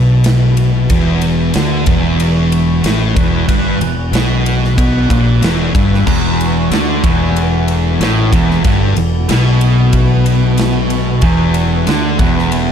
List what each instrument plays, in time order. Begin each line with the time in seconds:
Already playing: fingered electric bass B1, distorted electric guitar B2, synth drone E3 F#4 B4
0.24 snare, ride
0.57 ride
0.90 fingered electric bass E1, distorted electric guitar E2, kick, ride
1.22 ride
1.54 fingered electric bass D2, distorted electric guitar D3, snare, ride
1.86 fingered electric bass E1, distorted electric guitar E2, kick, ride
2.20 ride
2.52 ride
2.84 fingered electric bass A1, distorted electric guitar A2, snare, ride
3.15 fingered electric bass E1, distorted electric guitar E2, kick, ride
3.48 fingered electric bass G1, distorted electric guitar G2, kick, ride
3.80 fingered electric bass E1, distorted electric guitar E2, ride
4.13 fingered electric bass B1, distorted electric guitar B2, snare, ride
4.46 ride
4.64 snare
4.78 fingered electric bass B1, distorted electric guitar B2, kick, ride
5.10 fingered electric bass A#1, distorted electric guitar A#2, kick, ride
5.42 fingered electric bass E1, distorted electric guitar E2, snare, ride
5.75 fingered electric bass G1, distorted electric guitar G2, kick, ride
5.94 snare
6.06 fingered electric bass E1, distorted electric guitar E2, synth drone A3, kick, crash
6.41 ride
6.71 fingered electric bass D2, distorted electric guitar D3, snare, ride
7.04 fingered electric bass E1, distorted electric guitar E2, kick, ride
7.36 ride
7.68 ride
8.00 fingered electric bass A1, distorted electric guitar A2, snare, ride
8.32 fingered electric bass E1, distorted electric guitar E2, kick, ride
8.51 snare
8.64 fingered electric bass G1, distorted electric guitar G2, kick, ride
8.96 fingered electric bass E1, distorted electric guitar E2, ride
9.29 fingered electric bass B1, distorted electric guitar B2, snare, ride
9.61 ride
9.93 kick, ride
10.26 ride
10.58 snare, ride
10.90 ride
11.21 fingered electric bass E1, distorted electric guitar E2, kick, ride
11.54 ride
11.86 fingered electric bass D2, distorted electric guitar D3, snare, ride
12.19 fingered electric bass E1, distorted electric guitar E2, kick, ride
12.39 snare
12.52 ride